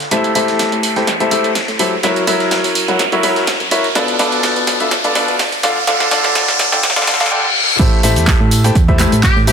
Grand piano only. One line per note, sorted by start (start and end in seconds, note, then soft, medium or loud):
0.11 0.31 A3 medium
0.11 0.31 E4 medium
0.11 0.31 G4 medium
0.11 0.31 A4 medium
0.11 0.31 C5 medium
0.11 0.31 E5 loud
0.35 0.93 A3 loud
0.35 0.93 E4 medium
0.35 0.93 G4 medium
0.35 0.93 A4 medium
0.35 0.93 C5 medium
0.35 0.93 E5 loud
0.96 1.07 A3 medium
0.96 1.07 E4 medium
0.96 1.07 G4 medium
0.96 1.07 A4 medium
0.96 1.07 C5 medium
0.96 1.07 G5 medium
1.20 1.30 A3 medium
1.20 1.30 E4 medium
1.20 1.30 G4 medium
1.20 1.30 A4 medium
1.20 1.30 C5 medium
1.20 1.30 E5 medium
1.31 1.51 A3 medium
1.31 1.51 E4 medium
1.31 1.51 G4 medium
1.31 1.51 A4 medium
1.31 1.51 C5 medium
1.31 1.51 E5 loud
1.79 1.92 F#3 medium
1.79 1.92 E4 medium
1.79 1.92 G4 medium
1.79 1.92 A4 medium
1.79 1.92 C5 medium
1.79 1.92 E5 loud
2.03 2.23 F#3 loud
2.03 2.23 E4 medium
2.03 2.23 F#4 medium
2.03 2.23 A#4 medium
2.03 2.23 C#5 medium
2.03 2.23 E5 loud
2.27 2.85 F#3 medium
2.27 2.85 E4 medium
2.27 2.85 F#4 medium
2.27 2.85 A#4 medium
2.27 2.85 C#5 medium
2.27 2.85 E5 loud
2.88 3.00 F#3 medium
2.88 3.00 E4 medium
2.88 3.00 F#4 medium
2.88 3.00 A#4 medium
2.88 3.00 C#5 medium
2.88 3.00 F#5 medium
3.12 3.22 F#3 medium
3.12 3.22 E4 medium
3.12 3.22 F#4 medium
3.12 3.22 A#4 medium
3.12 3.22 C#5 medium
3.12 3.22 E5 medium
3.23 3.43 F#3 medium
3.23 3.43 E4 medium
3.23 3.43 F#4 medium
3.23 3.43 A#4 medium
3.23 3.43 C#5 medium
3.23 3.43 E5 loud
3.71 3.84 E4 medium
3.71 3.84 F#4 medium
3.71 3.84 A#4 medium
3.71 3.84 C#5 medium
3.71 3.84 E5 loud
3.95 4.15 B2 loud
3.95 4.15 D4 medium
3.95 4.15 F4 medium
3.95 4.15 A4 medium
3.95 4.15 B4 medium
3.95 4.15 D5 loud
4.19 4.77 B2 loud
4.19 4.77 D4 medium
4.19 4.77 F4 medium
4.19 4.77 A4 medium
4.19 4.77 B4 medium
4.19 4.77 D5 loud
4.80 4.91 B2 medium
4.80 4.92 D4 medium
4.80 4.92 F4 medium
4.80 4.92 A4 medium
4.80 4.91 B4 medium
4.80 4.91 E5 medium
5.04 5.14 B2 medium
5.04 5.14 D4 medium
5.04 5.14 F4 medium
5.04 5.14 A4 medium
5.04 5.14 B4 medium
5.04 5.14 D5 medium
5.15 5.35 B2 medium
5.15 5.35 D4 medium
5.15 5.35 F4 medium
5.15 5.35 A4 medium
5.15 5.35 B4 medium
5.15 5.35 D5 loud
5.63 5.76 D3 medium
5.63 5.76 D4 medium
5.63 5.76 F4 medium
5.63 5.76 A4 medium
5.63 5.76 D5 medium
5.63 5.76 F5 loud
5.87 6.07 D3 loud
5.87 6.07 D4 medium
5.87 6.07 F4 medium
5.87 6.07 A4 medium
5.87 6.07 D5 medium
5.87 6.07 F5 loud
6.11 6.69 D3 loud
6.11 6.69 D4 medium
6.11 6.69 F4 medium
6.11 6.69 A4 medium
6.11 6.69 D5 medium
6.11 6.69 F5 loud
6.72 6.83 D3 medium
6.72 6.83 D4 medium
6.72 6.83 F4 medium
6.72 6.83 A4 medium
6.72 6.83 D5 medium
6.72 6.83 G5 medium
6.96 7.05 D3 medium
6.96 7.05 D4 medium
6.96 7.05 F4 medium
6.96 7.05 A4 medium
6.96 7.05 D5 medium
6.96 7.05 F5 loud
7.07 7.17 D3 medium
7.07 7.17 D4 medium
7.07 7.17 F4 medium
7.07 7.17 A4 medium
7.07 7.17 D5 medium
7.07 7.17 F5 loud
7.20 7.30 D3 loud
7.20 7.30 D4 medium
7.20 7.30 F4 medium
7.20 7.30 A4 medium
7.20 7.30 D5 medium
7.20 7.30 F5 loud
7.31 7.44 D3 medium
7.31 7.44 D4 medium
7.31 7.44 F4 medium
7.31 7.44 A4 medium
7.31 7.44 D5 medium
7.31 7.44 G5 loud
7.79 7.99 A3 medium
7.79 7.99 E4 medium
7.79 7.99 G4 medium
7.79 7.99 A4 medium
7.79 7.99 C5 medium
7.79 7.99 E5 loud
8.03 8.61 A3 loud
8.03 8.61 E4 medium
8.03 8.61 G4 medium
8.03 8.61 A4 medium
8.03 8.61 C5 medium
8.03 8.61 E5 loud
8.64 8.75 A3 medium
8.64 8.75 E4 medium
8.64 8.75 G4 medium
8.64 8.75 A4 medium
8.64 8.76 C5 medium
8.64 8.75 G5 medium
8.88 8.98 A3 medium
8.88 8.98 E4 medium
8.88 8.98 G4 medium
8.88 8.98 A4 medium
8.88 8.98 C5 medium
8.88 8.98 E5 medium
8.99 9.19 A3 medium
8.99 9.19 E4 medium
8.99 9.19 G4 medium
8.99 9.19 A4 medium
8.99 9.19 C5 medium
8.99 9.19 E5 loud
9.47 9.52 F#3 medium
9.47 9.52 E4 medium
9.47 9.52 G4 medium
9.47 9.52 A4 medium
9.47 9.52 C5 medium
9.47 9.52 E5 loud